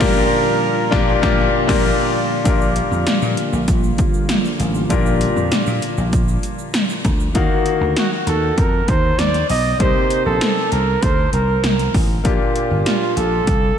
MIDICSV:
0, 0, Header, 1, 8, 480
1, 0, Start_track
1, 0, Tempo, 612245
1, 5, Time_signature, 4, 2, 24, 8
1, 10809, End_track
2, 0, Start_track
2, 0, Title_t, "Flugelhorn"
2, 0, Program_c, 0, 56
2, 0, Note_on_c, 0, 70, 101
2, 1445, Note_off_c, 0, 70, 0
2, 6251, Note_on_c, 0, 66, 80
2, 6357, Note_off_c, 0, 66, 0
2, 6490, Note_on_c, 0, 69, 84
2, 6729, Note_on_c, 0, 70, 87
2, 6741, Note_off_c, 0, 69, 0
2, 6968, Note_on_c, 0, 72, 89
2, 6979, Note_off_c, 0, 70, 0
2, 7203, Note_on_c, 0, 74, 94
2, 7215, Note_off_c, 0, 72, 0
2, 7439, Note_off_c, 0, 74, 0
2, 7444, Note_on_c, 0, 75, 98
2, 7668, Note_off_c, 0, 75, 0
2, 7685, Note_on_c, 0, 72, 96
2, 8020, Note_off_c, 0, 72, 0
2, 8042, Note_on_c, 0, 69, 89
2, 8403, Note_on_c, 0, 70, 88
2, 8414, Note_off_c, 0, 69, 0
2, 8641, Note_on_c, 0, 72, 94
2, 8653, Note_off_c, 0, 70, 0
2, 8877, Note_off_c, 0, 72, 0
2, 8882, Note_on_c, 0, 70, 83
2, 9332, Note_off_c, 0, 70, 0
2, 10082, Note_on_c, 0, 65, 84
2, 10326, Note_on_c, 0, 69, 97
2, 10337, Note_off_c, 0, 65, 0
2, 10809, Note_off_c, 0, 69, 0
2, 10809, End_track
3, 0, Start_track
3, 0, Title_t, "Grand piano"
3, 0, Program_c, 1, 0
3, 0, Control_c, 1, 64, 127
3, 0, Note_on_c, 1, 62, 106
3, 1, Note_on_c, 1, 65, 99
3, 4, Note_on_c, 1, 46, 96
3, 7, Note_on_c, 1, 67, 97
3, 13, Note_on_c, 1, 70, 97
3, 163, Note_off_c, 1, 62, 0
3, 166, Note_off_c, 1, 65, 0
3, 167, Note_off_c, 1, 46, 0
3, 169, Note_off_c, 1, 67, 0
3, 173, Note_off_c, 1, 70, 0
3, 713, Note_on_c, 1, 62, 101
3, 719, Note_on_c, 1, 65, 101
3, 722, Note_on_c, 1, 46, 94
3, 726, Note_on_c, 1, 67, 102
3, 732, Note_on_c, 1, 70, 97
3, 881, Note_off_c, 1, 62, 0
3, 885, Note_off_c, 1, 65, 0
3, 887, Note_off_c, 1, 46, 0
3, 889, Note_off_c, 1, 67, 0
3, 892, Note_off_c, 1, 70, 0
3, 952, Note_on_c, 1, 62, 102
3, 957, Note_on_c, 1, 65, 99
3, 960, Note_on_c, 1, 46, 100
3, 963, Note_on_c, 1, 67, 99
3, 970, Note_on_c, 1, 70, 97
3, 1121, Note_off_c, 1, 62, 0
3, 1124, Note_off_c, 1, 65, 0
3, 1126, Note_off_c, 1, 46, 0
3, 1127, Note_off_c, 1, 67, 0
3, 1131, Note_off_c, 1, 70, 0
3, 1312, Note_on_c, 1, 62, 97
3, 1319, Note_on_c, 1, 65, 96
3, 1321, Note_on_c, 1, 46, 97
3, 1325, Note_on_c, 1, 67, 98
3, 1331, Note_on_c, 1, 70, 101
3, 1481, Note_off_c, 1, 62, 0
3, 1485, Note_off_c, 1, 65, 0
3, 1486, Note_off_c, 1, 46, 0
3, 1488, Note_off_c, 1, 67, 0
3, 1492, Note_off_c, 1, 70, 0
3, 1914, Note_on_c, 1, 62, 75
3, 1921, Note_on_c, 1, 65, 68
3, 1923, Note_on_c, 1, 46, 74
3, 1926, Note_on_c, 1, 67, 64
3, 1934, Control_c, 1, 64, 0
3, 1934, Note_on_c, 1, 70, 86
3, 2093, Control_c, 1, 64, 127
3, 2613, Note_off_c, 1, 46, 0
3, 3808, Note_off_c, 1, 62, 0
3, 3812, Note_off_c, 1, 65, 0
3, 3814, Note_off_c, 1, 67, 0
3, 3818, Note_off_c, 1, 70, 0
3, 3838, Note_on_c, 1, 62, 75
3, 3844, Note_on_c, 1, 65, 67
3, 3846, Note_on_c, 1, 46, 75
3, 3849, Note_on_c, 1, 67, 69
3, 3856, Note_on_c, 1, 70, 78
3, 4534, Note_off_c, 1, 46, 0
3, 5730, Note_off_c, 1, 62, 0
3, 5733, Note_off_c, 1, 65, 0
3, 5736, Note_off_c, 1, 67, 0
3, 5739, Note_off_c, 1, 70, 0
3, 5757, Note_on_c, 1, 58, 70
3, 5763, Note_on_c, 1, 63, 66
3, 5767, Note_on_c, 1, 51, 74
3, 5770, Note_on_c, 1, 77, 64
3, 5776, Control_c, 1, 64, 0
3, 5776, Note_on_c, 1, 66, 83
3, 5906, Control_c, 1, 64, 127
3, 6455, Note_off_c, 1, 51, 0
3, 7650, Note_off_c, 1, 58, 0
3, 7653, Note_off_c, 1, 63, 0
3, 7656, Note_off_c, 1, 77, 0
3, 7659, Note_off_c, 1, 66, 0
3, 7676, Note_on_c, 1, 58, 57
3, 7682, Note_on_c, 1, 60, 56
3, 7685, Note_on_c, 1, 48, 58
3, 7688, Note_on_c, 1, 63, 56
3, 7694, Control_c, 1, 64, 0
3, 7694, Note_on_c, 1, 67, 70
3, 7839, Control_c, 1, 64, 127
3, 8374, Note_off_c, 1, 48, 0
3, 9569, Note_off_c, 1, 58, 0
3, 9572, Note_off_c, 1, 60, 0
3, 9575, Note_off_c, 1, 63, 0
3, 9578, Note_off_c, 1, 67, 0
3, 9593, Note_on_c, 1, 58, 70
3, 9599, Note_on_c, 1, 62, 66
3, 9603, Note_on_c, 1, 46, 69
3, 9607, Note_on_c, 1, 65, 69
3, 9612, Note_on_c, 1, 67, 81
3, 9616, Control_c, 1, 64, 0
3, 9771, Control_c, 1, 64, 127
3, 10293, Note_off_c, 1, 46, 0
3, 10809, Note_off_c, 1, 58, 0
3, 10809, Note_off_c, 1, 62, 0
3, 10809, Note_off_c, 1, 65, 0
3, 10809, Note_off_c, 1, 67, 0
3, 10809, End_track
4, 0, Start_track
4, 0, Title_t, "Analog polysynth"
4, 0, Program_c, 2, 90
4, 3, Note_on_c, 2, 55, 104
4, 4, Note_on_c, 2, 67, 102
4, 167, Note_off_c, 2, 55, 0
4, 168, Note_off_c, 2, 67, 0
4, 723, Note_on_c, 2, 62, 105
4, 723, Note_on_c, 2, 74, 106
4, 887, Note_off_c, 2, 62, 0
4, 887, Note_off_c, 2, 74, 0
4, 964, Note_on_c, 2, 62, 94
4, 964, Note_on_c, 2, 74, 101
4, 1128, Note_off_c, 2, 62, 0
4, 1128, Note_off_c, 2, 74, 0
4, 1323, Note_on_c, 2, 70, 104
4, 1324, Note_on_c, 2, 58, 109
4, 1487, Note_off_c, 2, 70, 0
4, 1488, Note_off_c, 2, 58, 0
4, 10809, End_track
5, 0, Start_track
5, 0, Title_t, "Analog synth pad"
5, 0, Program_c, 3, 89
5, 0, Note_on_c, 3, 50, 81
5, 0, Note_on_c, 3, 53, 69
5, 0, Note_on_c, 3, 55, 73
5, 0, Note_on_c, 3, 58, 73
5, 0, Note_on_c, 3, 65, 84
5, 1895, Note_off_c, 3, 50, 0
5, 1895, Note_off_c, 3, 53, 0
5, 1895, Note_off_c, 3, 55, 0
5, 1895, Note_off_c, 3, 58, 0
5, 1895, Note_off_c, 3, 65, 0
5, 1928, Note_on_c, 3, 50, 78
5, 1928, Note_on_c, 3, 53, 69
5, 1928, Note_on_c, 3, 58, 69
5, 1928, Note_on_c, 3, 65, 85
5, 1929, Note_on_c, 3, 55, 67
5, 5735, Note_off_c, 3, 53, 0
5, 5735, Note_off_c, 3, 58, 0
5, 5735, Note_off_c, 3, 65, 0
5, 5736, Note_off_c, 3, 50, 0
5, 5736, Note_off_c, 3, 55, 0
5, 10809, End_track
6, 0, Start_track
6, 0, Title_t, "Slap bass"
6, 0, Program_c, 4, 36
6, 4, Note_on_c, 4, 34, 98
6, 168, Note_off_c, 4, 34, 0
6, 723, Note_on_c, 4, 34, 97
6, 887, Note_off_c, 4, 34, 0
6, 964, Note_on_c, 4, 34, 104
6, 1128, Note_off_c, 4, 34, 0
6, 1325, Note_on_c, 4, 34, 95
6, 1488, Note_off_c, 4, 34, 0
6, 1924, Note_on_c, 4, 34, 96
6, 2194, Note_off_c, 4, 34, 0
6, 2282, Note_on_c, 4, 41, 79
6, 2373, Note_off_c, 4, 41, 0
6, 2524, Note_on_c, 4, 46, 97
6, 2614, Note_off_c, 4, 46, 0
6, 2764, Note_on_c, 4, 34, 79
6, 2855, Note_off_c, 4, 34, 0
6, 2884, Note_on_c, 4, 34, 89
6, 3064, Note_off_c, 4, 34, 0
6, 3603, Note_on_c, 4, 33, 90
6, 3784, Note_off_c, 4, 33, 0
6, 3844, Note_on_c, 4, 34, 93
6, 4114, Note_off_c, 4, 34, 0
6, 4203, Note_on_c, 4, 41, 85
6, 4294, Note_off_c, 4, 41, 0
6, 4445, Note_on_c, 4, 46, 89
6, 4535, Note_off_c, 4, 46, 0
6, 4684, Note_on_c, 4, 34, 78
6, 4775, Note_off_c, 4, 34, 0
6, 4805, Note_on_c, 4, 34, 80
6, 4985, Note_off_c, 4, 34, 0
6, 5525, Note_on_c, 4, 38, 83
6, 5705, Note_off_c, 4, 38, 0
6, 5764, Note_on_c, 4, 39, 93
6, 5854, Note_off_c, 4, 39, 0
6, 6122, Note_on_c, 4, 38, 75
6, 6213, Note_off_c, 4, 38, 0
6, 6480, Note_on_c, 4, 39, 74
6, 6662, Note_off_c, 4, 39, 0
6, 6724, Note_on_c, 4, 41, 80
6, 6905, Note_off_c, 4, 41, 0
6, 6965, Note_on_c, 4, 39, 81
6, 7145, Note_off_c, 4, 39, 0
6, 7199, Note_on_c, 4, 39, 82
6, 7382, Note_off_c, 4, 39, 0
6, 7444, Note_on_c, 4, 35, 78
6, 7624, Note_off_c, 4, 35, 0
6, 7683, Note_on_c, 4, 36, 93
6, 7774, Note_off_c, 4, 36, 0
6, 8043, Note_on_c, 4, 34, 77
6, 8134, Note_off_c, 4, 34, 0
6, 8403, Note_on_c, 4, 36, 79
6, 8584, Note_off_c, 4, 36, 0
6, 8645, Note_on_c, 4, 38, 82
6, 8825, Note_off_c, 4, 38, 0
6, 8881, Note_on_c, 4, 36, 77
6, 9063, Note_off_c, 4, 36, 0
6, 9120, Note_on_c, 4, 36, 83
6, 9302, Note_off_c, 4, 36, 0
6, 9363, Note_on_c, 4, 33, 86
6, 9544, Note_off_c, 4, 33, 0
6, 9603, Note_on_c, 4, 34, 89
6, 9694, Note_off_c, 4, 34, 0
6, 9963, Note_on_c, 4, 31, 82
6, 10054, Note_off_c, 4, 31, 0
6, 10322, Note_on_c, 4, 34, 86
6, 10504, Note_off_c, 4, 34, 0
6, 10563, Note_on_c, 4, 36, 91
6, 10744, Note_off_c, 4, 36, 0
6, 10809, End_track
7, 0, Start_track
7, 0, Title_t, "Muted slap bass strokes"
7, 4324, Note_on_c, 9, 29, 48
7, 4402, Note_off_c, 9, 29, 0
7, 10809, End_track
8, 0, Start_track
8, 0, Title_t, "Drums"
8, 4, Note_on_c, 9, 36, 114
8, 5, Note_on_c, 9, 38, 108
8, 5, Note_on_c, 9, 49, 85
8, 82, Note_off_c, 9, 36, 0
8, 83, Note_off_c, 9, 38, 0
8, 83, Note_off_c, 9, 49, 0
8, 724, Note_on_c, 9, 36, 108
8, 724, Note_on_c, 9, 38, 107
8, 802, Note_off_c, 9, 38, 0
8, 803, Note_off_c, 9, 36, 0
8, 964, Note_on_c, 9, 36, 115
8, 964, Note_on_c, 9, 38, 114
8, 1042, Note_off_c, 9, 38, 0
8, 1043, Note_off_c, 9, 36, 0
8, 1324, Note_on_c, 9, 36, 110
8, 1324, Note_on_c, 9, 38, 101
8, 1324, Note_on_c, 9, 49, 81
8, 1403, Note_off_c, 9, 36, 0
8, 1403, Note_off_c, 9, 38, 0
8, 1403, Note_off_c, 9, 49, 0
8, 1924, Note_on_c, 9, 42, 89
8, 1925, Note_on_c, 9, 36, 113
8, 1927, Note_on_c, 9, 82, 73
8, 2002, Note_off_c, 9, 42, 0
8, 2003, Note_off_c, 9, 36, 0
8, 2005, Note_off_c, 9, 82, 0
8, 2047, Note_on_c, 9, 82, 52
8, 2125, Note_off_c, 9, 82, 0
8, 2162, Note_on_c, 9, 42, 86
8, 2241, Note_off_c, 9, 42, 0
8, 2290, Note_on_c, 9, 82, 42
8, 2369, Note_off_c, 9, 82, 0
8, 2404, Note_on_c, 9, 38, 117
8, 2404, Note_on_c, 9, 42, 81
8, 2408, Note_on_c, 9, 82, 59
8, 2482, Note_off_c, 9, 42, 0
8, 2483, Note_off_c, 9, 38, 0
8, 2486, Note_off_c, 9, 82, 0
8, 2524, Note_on_c, 9, 82, 47
8, 2602, Note_off_c, 9, 82, 0
8, 2645, Note_on_c, 9, 42, 71
8, 2723, Note_off_c, 9, 42, 0
8, 2767, Note_on_c, 9, 82, 47
8, 2846, Note_off_c, 9, 82, 0
8, 2884, Note_on_c, 9, 42, 80
8, 2885, Note_on_c, 9, 36, 94
8, 2887, Note_on_c, 9, 82, 70
8, 2962, Note_off_c, 9, 42, 0
8, 2964, Note_off_c, 9, 36, 0
8, 2966, Note_off_c, 9, 82, 0
8, 3006, Note_on_c, 9, 82, 54
8, 3084, Note_off_c, 9, 82, 0
8, 3123, Note_on_c, 9, 42, 66
8, 3125, Note_on_c, 9, 36, 89
8, 3130, Note_on_c, 9, 82, 52
8, 3201, Note_off_c, 9, 42, 0
8, 3204, Note_off_c, 9, 36, 0
8, 3209, Note_off_c, 9, 82, 0
8, 3245, Note_on_c, 9, 82, 46
8, 3323, Note_off_c, 9, 82, 0
8, 3362, Note_on_c, 9, 38, 116
8, 3363, Note_on_c, 9, 42, 89
8, 3367, Note_on_c, 9, 82, 61
8, 3441, Note_off_c, 9, 38, 0
8, 3442, Note_off_c, 9, 42, 0
8, 3446, Note_off_c, 9, 82, 0
8, 3488, Note_on_c, 9, 82, 49
8, 3566, Note_off_c, 9, 82, 0
8, 3604, Note_on_c, 9, 42, 70
8, 3609, Note_on_c, 9, 82, 43
8, 3682, Note_off_c, 9, 42, 0
8, 3688, Note_off_c, 9, 82, 0
8, 3721, Note_on_c, 9, 82, 47
8, 3799, Note_off_c, 9, 82, 0
8, 3843, Note_on_c, 9, 42, 85
8, 3844, Note_on_c, 9, 36, 109
8, 3845, Note_on_c, 9, 82, 71
8, 3921, Note_off_c, 9, 42, 0
8, 3923, Note_off_c, 9, 36, 0
8, 3923, Note_off_c, 9, 82, 0
8, 3966, Note_on_c, 9, 82, 56
8, 4045, Note_off_c, 9, 82, 0
8, 4084, Note_on_c, 9, 42, 81
8, 4162, Note_off_c, 9, 42, 0
8, 4208, Note_on_c, 9, 82, 43
8, 4286, Note_off_c, 9, 82, 0
8, 4324, Note_on_c, 9, 82, 58
8, 4325, Note_on_c, 9, 38, 112
8, 4325, Note_on_c, 9, 42, 77
8, 4403, Note_off_c, 9, 42, 0
8, 4403, Note_off_c, 9, 82, 0
8, 4404, Note_off_c, 9, 38, 0
8, 4442, Note_on_c, 9, 82, 46
8, 4520, Note_off_c, 9, 82, 0
8, 4565, Note_on_c, 9, 42, 67
8, 4644, Note_off_c, 9, 42, 0
8, 4684, Note_on_c, 9, 82, 46
8, 4763, Note_off_c, 9, 82, 0
8, 4805, Note_on_c, 9, 36, 91
8, 4805, Note_on_c, 9, 42, 81
8, 4805, Note_on_c, 9, 82, 67
8, 4883, Note_off_c, 9, 42, 0
8, 4883, Note_off_c, 9, 82, 0
8, 4884, Note_off_c, 9, 36, 0
8, 4925, Note_on_c, 9, 82, 57
8, 5003, Note_off_c, 9, 82, 0
8, 5043, Note_on_c, 9, 42, 65
8, 5050, Note_on_c, 9, 82, 51
8, 5121, Note_off_c, 9, 42, 0
8, 5128, Note_off_c, 9, 82, 0
8, 5163, Note_on_c, 9, 82, 45
8, 5242, Note_off_c, 9, 82, 0
8, 5283, Note_on_c, 9, 38, 114
8, 5284, Note_on_c, 9, 42, 90
8, 5285, Note_on_c, 9, 82, 64
8, 5361, Note_off_c, 9, 38, 0
8, 5362, Note_off_c, 9, 42, 0
8, 5363, Note_off_c, 9, 82, 0
8, 5406, Note_on_c, 9, 82, 51
8, 5484, Note_off_c, 9, 82, 0
8, 5524, Note_on_c, 9, 42, 67
8, 5525, Note_on_c, 9, 36, 90
8, 5529, Note_on_c, 9, 82, 44
8, 5603, Note_off_c, 9, 36, 0
8, 5603, Note_off_c, 9, 42, 0
8, 5607, Note_off_c, 9, 82, 0
8, 5644, Note_on_c, 9, 82, 43
8, 5723, Note_off_c, 9, 82, 0
8, 5762, Note_on_c, 9, 42, 89
8, 5764, Note_on_c, 9, 36, 105
8, 5840, Note_off_c, 9, 42, 0
8, 5842, Note_off_c, 9, 36, 0
8, 6003, Note_on_c, 9, 42, 82
8, 6081, Note_off_c, 9, 42, 0
8, 6244, Note_on_c, 9, 42, 77
8, 6245, Note_on_c, 9, 38, 113
8, 6323, Note_off_c, 9, 42, 0
8, 6324, Note_off_c, 9, 38, 0
8, 6484, Note_on_c, 9, 42, 66
8, 6562, Note_off_c, 9, 42, 0
8, 6724, Note_on_c, 9, 36, 97
8, 6724, Note_on_c, 9, 42, 80
8, 6802, Note_off_c, 9, 42, 0
8, 6803, Note_off_c, 9, 36, 0
8, 6962, Note_on_c, 9, 42, 64
8, 6965, Note_on_c, 9, 36, 88
8, 7041, Note_off_c, 9, 42, 0
8, 7043, Note_off_c, 9, 36, 0
8, 7203, Note_on_c, 9, 38, 113
8, 7204, Note_on_c, 9, 42, 90
8, 7281, Note_off_c, 9, 38, 0
8, 7282, Note_off_c, 9, 42, 0
8, 7325, Note_on_c, 9, 42, 51
8, 7404, Note_off_c, 9, 42, 0
8, 7444, Note_on_c, 9, 46, 69
8, 7523, Note_off_c, 9, 46, 0
8, 7683, Note_on_c, 9, 42, 83
8, 7684, Note_on_c, 9, 36, 104
8, 7761, Note_off_c, 9, 42, 0
8, 7763, Note_off_c, 9, 36, 0
8, 7922, Note_on_c, 9, 42, 77
8, 8000, Note_off_c, 9, 42, 0
8, 8163, Note_on_c, 9, 42, 78
8, 8164, Note_on_c, 9, 38, 112
8, 8242, Note_off_c, 9, 38, 0
8, 8242, Note_off_c, 9, 42, 0
8, 8403, Note_on_c, 9, 42, 67
8, 8482, Note_off_c, 9, 42, 0
8, 8644, Note_on_c, 9, 42, 77
8, 8645, Note_on_c, 9, 36, 95
8, 8722, Note_off_c, 9, 42, 0
8, 8723, Note_off_c, 9, 36, 0
8, 8882, Note_on_c, 9, 42, 64
8, 8961, Note_off_c, 9, 42, 0
8, 9123, Note_on_c, 9, 38, 110
8, 9124, Note_on_c, 9, 42, 89
8, 9201, Note_off_c, 9, 38, 0
8, 9202, Note_off_c, 9, 42, 0
8, 9247, Note_on_c, 9, 42, 53
8, 9325, Note_off_c, 9, 42, 0
8, 9364, Note_on_c, 9, 36, 91
8, 9365, Note_on_c, 9, 46, 66
8, 9443, Note_off_c, 9, 36, 0
8, 9443, Note_off_c, 9, 46, 0
8, 9603, Note_on_c, 9, 42, 87
8, 9604, Note_on_c, 9, 36, 104
8, 9681, Note_off_c, 9, 42, 0
8, 9683, Note_off_c, 9, 36, 0
8, 9844, Note_on_c, 9, 42, 82
8, 9922, Note_off_c, 9, 42, 0
8, 10084, Note_on_c, 9, 38, 113
8, 10084, Note_on_c, 9, 42, 78
8, 10162, Note_off_c, 9, 42, 0
8, 10163, Note_off_c, 9, 38, 0
8, 10325, Note_on_c, 9, 42, 70
8, 10403, Note_off_c, 9, 42, 0
8, 10563, Note_on_c, 9, 42, 76
8, 10564, Note_on_c, 9, 36, 93
8, 10641, Note_off_c, 9, 42, 0
8, 10642, Note_off_c, 9, 36, 0
8, 10809, End_track
0, 0, End_of_file